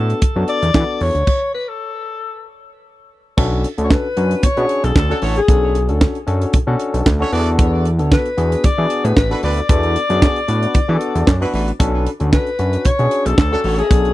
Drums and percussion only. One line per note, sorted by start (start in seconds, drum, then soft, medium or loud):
0.10 closed hi-hat medium
0.22 kick loud
0.22 closed hi-hat loud
0.48 closed hi-hat medium
0.62 closed hi-hat medium
0.74 kick loud
0.74 snare loud
0.74 clap medium
1.01 open hi-hat medium
1.15 closed hi-hat medium
1.27 kick loud
1.27 crash medium
3.38 kick loud
3.38 crash loud
3.64 closed hi-hat medium
3.78 closed hi-hat soft
3.90 kick loud
3.90 snare loud
3.90 clap medium
4.17 closed hi-hat medium
4.31 closed hi-hat medium
4.43 kick loud
4.43 closed hi-hat loud
4.57 closed hi-hat soft
4.69 closed hi-hat medium
4.84 closed hi-hat medium
4.96 kick loud
4.96 snare loud
4.96 clap loud
5.22 open hi-hat medium
5.36 closed hi-hat medium
5.48 kick loud
5.48 closed hi-hat medium
5.75 closed hi-hat medium
5.89 closed hi-hat soft
6.01 kick loud
6.01 snare loud
6.01 clap medium
6.15 closed hi-hat soft
6.28 closed hi-hat medium
6.42 closed hi-hat medium
6.53 kick loud
6.53 closed hi-hat loud
6.79 closed hi-hat medium
6.94 closed hi-hat medium
7.06 kick loud
7.06 snare loud
7.06 clap medium
7.32 open hi-hat medium
7.47 closed hi-hat soft
7.59 kick loud
7.59 closed hi-hat medium
7.85 closed hi-hat medium
7.99 closed hi-hat soft
8.12 kick loud
8.12 snare loud
8.12 clap medium
8.26 closed hi-hat soft
8.38 closed hi-hat medium
8.52 closed hi-hat medium
8.64 kick loud
8.64 closed hi-hat loud
8.90 closed hi-hat medium
9.05 closed hi-hat medium
9.17 kick loud
9.17 snare loud
9.17 clap medium
9.31 closed hi-hat soft
9.43 open hi-hat medium
9.57 closed hi-hat medium
9.69 kick loud
9.69 closed hi-hat loud
9.83 closed hi-hat soft
9.96 closed hi-hat medium
10.10 closed hi-hat soft
10.22 kick loud
10.22 snare loud
10.22 clap medium
10.36 closed hi-hat soft
10.48 closed hi-hat medium
10.63 closed hi-hat medium
10.74 kick loud
10.74 closed hi-hat medium
11.01 closed hi-hat medium
11.16 closed hi-hat medium
11.27 kick loud
11.27 snare loud
11.27 clap medium
11.53 open hi-hat medium
11.68 closed hi-hat medium
11.80 kick loud
11.80 closed hi-hat medium
12.07 closed hi-hat medium
12.20 closed hi-hat soft
12.33 kick loud
12.33 snare loud
12.33 clap medium
12.47 closed hi-hat soft
12.59 closed hi-hat medium
12.73 closed hi-hat medium
12.85 kick loud
12.85 closed hi-hat medium
12.99 closed hi-hat soft
13.11 closed hi-hat medium
13.26 closed hi-hat medium
13.38 kick loud
13.38 snare loud
13.38 clap medium
13.64 open hi-hat medium
13.79 closed hi-hat soft
13.91 kick loud
13.91 closed hi-hat medium
14.05 closed hi-hat soft